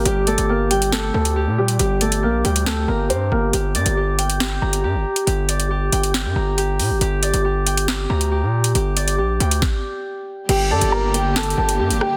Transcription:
Already playing: D5 G5 A#5
0.05 G1 G3 G4, closed hi-hat
0.27 A3 A4 D5, closed hi-hat
0.38 G1, closed hi-hat
0.49 A#3 G4 A#4
0.71 G3 G4 G5, closed hi-hat
0.82 closed hi-hat
0.92 A3 G4 A4, snare
1.14 D2 A3 A4
1.25 closed hi-hat
1.36 G4
1.47 A#2
1.58 G3 G4
1.68 closed hi-hat
1.79 G1 G3 G4, closed hi-hat
2.01 A3 A4 D5, closed hi-hat
2.12 closed hi-hat
2.23 A#1 A#3 G4 A#4
2.44 D2 G3 G4 G5, closed hi-hat
2.56 closed hi-hat
2.66 A3 G4 A4, snare, closed hi-hat
2.88 G1 A#3 A#4 A#5
3.09 G2 C4 G4 C5, closed hi-hat
3.31 G1 A#3 A#4
3.53 G1 G4, closed hi-hat
3.75 G2 D5, closed hi-hat
3.86 G1, closed hi-hat
3.97 G4
4.18 G5, closed hi-hat
4.30 closed hi-hat
4.40 G4, snare
4.62 G1 A#5
4.73 closed hi-hat
4.84 G2 G4
4.95 G1
5.16 closed hi-hat
5.27 G1 G4, closed hi-hat
5.49 D5, closed hi-hat
5.60 closed hi-hat
5.71 G4
5.92 G1 G5, closed hi-hat
6.04 closed hi-hat
6.14 snare, closed hi-hat
6.25 G2
6.36 G1 A#5
6.58 G4, closed hi-hat
6.79 A#2, open hi-hat
6.90 G1
7.01 G1 G4, closed hi-hat
7.23 D5, closed hi-hat
7.34 G1, closed hi-hat
7.45 G4
7.66 G5, closed hi-hat
7.77 closed hi-hat
7.88 G4, snare
8.10 D2 A#5
8.21 closed hi-hat
8.32 G4
8.42 A#2
8.64 closed hi-hat
8.75 G1 G4, closed hi-hat
8.97 D5, closed hi-hat
9.08 closed hi-hat
9.18 A#1 G4
9.40 D2 G5, closed hi-hat
9.51 closed hi-hat
9.62 kick, snare
10.49 G1 D3 G3 A#3 G4 G5, closed hi-hat, crash
10.71 G2 A4 D5 A5
10.81 G1, closed hi-hat
10.92 G4 A#4 A#5
11.14 G4 G5, closed hi-hat
11.36 G4 A4 A5, snare, closed hi-hat
11.43 closed hi-hat
11.50 closed hi-hat
11.58 G1 A4 A5
11.69 closed hi-hat
11.79 G2 G4
11.90 G1, closed hi-hat
12.01 G4 G5, cross-stick

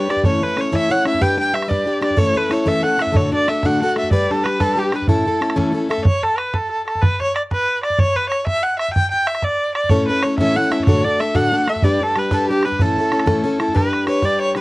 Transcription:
Already playing: C#5
0.09 G3 D4 G4 B4 D5, bodhran
0.16 bodhran
0.23 A2 E3 A3 C#4 E4 C#5, bodhran
0.42 A3 C#4 E4 B4 C#5, bodhran
0.56 A3 C#4 E4 C#5, bodhran
0.72 A2 E3 A3 C#4 E4 C#5 E5, bodhran
0.90 A3 C#4 E4 C#5 F#5
1.05 A3 C#4 E4 C#5 E5, bodhran
1.14 bodhran
1.20 G3 D4 G4 B4 G5, bodhran
1.37 G3 D4 G4 B4 G5
1.53 G3 D4 G4 B4 E5, bodhran
1.62 bodhran
1.68 G3 D4 G4 B4 D5, bodhran
1.85 G3 D4 G4 B4
2.01 G3 D4 G4 B4 D5, bodhran
2.10 bodhran
2.16 A2 E3 A3 C#4 E4 A4 C#5, bodhran
2.35 A3 C#4 E4 A4 B4, bodhran
2.49 A3 C#4 E4 A4 C#5, bodhran
2.66 A2 E3 A3 C#4 E4 A4 E5, bodhran
2.82 A3 C#4 E4 A4 F#5
2.98 A3 C#4 E4 A4 E5, bodhran
3.07 bodhran
3.11 A2 D3 A3 D4 F#4 A4, bodhran
3.16 C#5
3.31 A3 D4 F#4 A4 D5, bodhran
3.48 A3 D4 F#4 A4 E5, bodhran
3.63 A2 D3 A3 D4 F#4 A4 F#5, bodhran
3.82 A3 D4 F#4 A4 F#5
3.96 A3 D4 F#4 A4 E5, bodhran
4.03 bodhran
4.11 G3 D4 G4 B4 D5, bodhran
4.30 G3 D4 G4 A4 B4, bodhran
4.44 G3 D4 G4 B4, bodhran
4.48 B4
4.60 G3 D4 G4 A4 B4, bodhran
4.76 G3 D4 G4 B4
4.92 G3 D4 G4 B4, bodhran
5.02 bodhran
5.08 A2 E3 A3 C#4 E4 A4, bodhran
5.25 A3 C#4 E4 A4, bodhran
5.40 A3 C#4 E4 A4, bodhran
5.50 bodhran
5.55 A2 E3 A3 C#4 E4 A4, bodhran
5.72 A3 C#4 E4 A4
5.89 A3 C#4 E4 A4 E5, bodhran
5.98 bodhran
6.05 C#5, bodhran
6.23 A4, bodhran
6.38 B4, bodhran
6.54 A4, bodhran
6.71 A4
6.87 A4, bodhran
6.95 bodhran
7.01 B4, bodhran
7.20 C#5, bodhran
7.35 D5, bodhran
7.51 B4, bodhran
7.83 D5, bodhran
7.90 bodhran
7.98 C#5, bodhran
8.15 B4, bodhran
8.29 C#5, bodhran
8.47 E5, bodhran
8.63 F#5
8.79 E5, bodhran
8.88 bodhran
8.94 G5, bodhran
9.11 G5, bodhran
9.27 E5, bodhran
9.35 bodhran
9.42 D5, bodhran
9.75 D5, bodhran
9.84 bodhran
9.89 A2 E3 A3 C#4 E4 A4 C#5, bodhran
10.08 A3 C#4 E4 A4 B4, bodhran
10.23 A3 C#4 E4 A4 C#5, bodhran
10.38 A2 E3 A3 C#4 E4 A4 E5, bodhran
10.56 A3 C#4 E4 A4 F#5
10.70 A3 C#4 E4 A4 E5, bodhran
10.80 bodhran
10.85 A2 D3 A3 D4 F#4 A4 C#5, bodhran
11.04 A3 D4 F#4 A4 D5, bodhran
11.20 A3 D4 F#4 A4 E5, bodhran
11.35 A2 D3 A3 D4 F#4 A4 F#5, bodhran
11.52 A3 D4 F#4 A4
11.67 A3 D4 A4 E5, bodhran
11.76 bodhran
11.82 G3 D4 G4 B4 D5, bodhran
12.00 D4 G4 A4 B4, bodhran
12.16 G3 D4 G4 B4, bodhran
12.31 G3 D4 G4 A4 B4, bodhran
12.49 G3 D4 G4 B4
12.63 G3 D4 B4, bodhran
12.67 G4
12.72 bodhran
12.79 A2 E3 A3 C#4 E4 A4, bodhran
12.97 A3 C#4 E4 A4, bodhran
13.12 A3 C#4 E4 A4, bodhran
13.19 bodhran
13.26 A2 E3 A3 C#4 E4 A4, bodhran
13.44 A3 C#4 E4 A4
13.60 A3 C#4 E4 A4, bodhran
13.68 bodhran
13.73 G3 D4 G4 B4, bodhran
13.93 bodhran
14.06 G3 D4 G4 B4 C#5, bodhran
14.22 G3 D4 G4 B4 D5, bodhran
14.41 C#5
14.55 G3 D4 G4 B4, bodhran

